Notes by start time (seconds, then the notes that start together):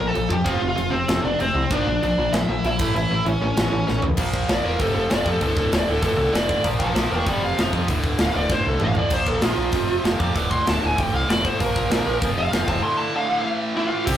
0.00 A#1 A#2 F3
0.08 A4 A5
0.14 A#1 A#2 F3, crash
0.29 F2 A#2 F3 G4, kick
0.33 G5
0.44 F1 F2 C3 F3 F4 F5, kick, crash
0.60 F1 F2 C3
0.68 F4 F5
0.76 F1 F2 C3, crash
0.90 F1 F2 C3 C4 C5
1.08 F1 F2 C3, snare, crash
1.23 F1 F2 C3 D4 D5
1.39 F1 F2 C3 C4 C5, crash
1.54 C2 F2 C3
1.70 A#1 A#2 F3 A#3 D4 D5, kick, crash
1.87 A#1 A#2 F3
2.02 A#1 A#2 F3 D4 D5, crash
2.18 A#1 A#2 F3
2.32 A#1 A#2 F3 E4 E5, snare, crash
2.48 A#1 A#2 F3
2.64 A#1 A#2 F3 E4 E5, crash
2.79 A1 A2 E3 A3, kick, crash
2.94 A1 A2 E3 E4 E5, crash
3.09 A1 A2 E3
3.25 A1 A2 E3 C#4 C#5, crash
3.41 A1 A2 E3 C#4 C#5
3.57 A1 A2 E3, snare, crash
3.71 A1 A2 E3
3.87 A1 A2 E3, snare
4.02 C#2 A2 E3, floor tom
4.17 A#1 A#2 F3 A#3, kick, crash
4.33 A#1, kick
4.48 A#1 A#2 F3 A#3 D5, snare, open hi-hat
4.64 E1 A#2 F3 A#3 A#4
4.79 F1 F2 C3 F3 A4, kick, open hi-hat
4.95 F1 A4
5.09 F1 F2 C3 F3 D5, snare, open hi-hat
5.25 F2 C3 F3 A4, kick
5.41 D1 D2 A2 D3 A4, kick, open hi-hat
5.56 D1 A4, kick
5.72 D1 D2 A2 D3 D5, snare, open hi-hat
5.87 D1 D2 A2 D3 A4
6.02 F1 D2 A2 D3 A4, kick, open hi-hat
6.17 C2 A4
6.33 F1 D2 A2 D3 D5, snare, open hi-hat
6.49 D2 A2 D3, kick
6.63 A#1 A#2 F3 A#3, kick, open hi-hat
6.80 A#1 C5 A5, kick
6.94 A#1 A#2 F3 A#3 C5 A5, snare, open hi-hat
7.10 E1 A#2 F3 A#3 A#4
7.15 G5
7.26 F1 F2 C3 F3 D5 G5, kick, open hi-hat
7.42 F1 F5
7.57 F1 F2 C3 F3, snare, open hi-hat
7.73 F2 C3 F3, kick
7.88 D1 D2 A2 D3, kick, open hi-hat
8.03 D1, kick
8.18 D1 D2 A2 D3 F5, snare, open hi-hat
8.35 D1 D2 A2 D3 D5
8.49 F1 D2 A2 D3 C5, kick, snare
8.66 C2 A4
8.80 A1 D2 A2 D3 F5, mid tom
8.95 D2 A2 D3 D5, floor tom
9.10 A#1 A#2 F3 A#3 C5, kick, crash
9.27 A#1 A4, kick
9.41 A#1 A#2 F3 A#3 F4, snare, open hi-hat
9.57 A#1 A#2 F3 A#3
9.72 F1 F2 C3 F3, kick, open hi-hat
9.87 F1
10.03 F1 F2 C3 F3, snare, open hi-hat
10.20 F2 C3 F3 D6, kick
10.35 D1 D2 A2 D3, kick, open hi-hat
10.51 D1 C6, kick
10.66 D1 D2 A2 D3 A5, snare, open hi-hat
10.81 D1 D2 A2 D3
10.86 G#5
10.95 F1 D2 A2 D3 G5, kick, open hi-hat
11.13 C2 F5
11.28 F1 D2 A2 D3 D5, snare, open hi-hat
11.45 D2 A2 D3 C5, kick
11.59 A#1 A#2 F3 A#3 A#4, kick, open hi-hat
11.76 A#1, kick
11.90 A#1 A#2 F3 A#3, snare, open hi-hat
12.06 A#1 A#2 F3 A#3
12.22 F1 F2 C3 F3, kick, open hi-hat
12.37 F1 F5
12.52 F1 F2 C3 F3, snare, open hi-hat
12.66 E1 F2 C3 F3 A5, kick
12.81 D2 A2 D3 C6
12.97 A5
13.13 D2 A2 D3 F5
13.29 D2 A2 D3
13.43 A2 E3 A3
13.75 A2 E3 A3 E4
13.80 E5
13.85 F4 F5
13.92 A2 E3 A3
14.05 C2 C3 G3 C4 G4 G5, kick, crash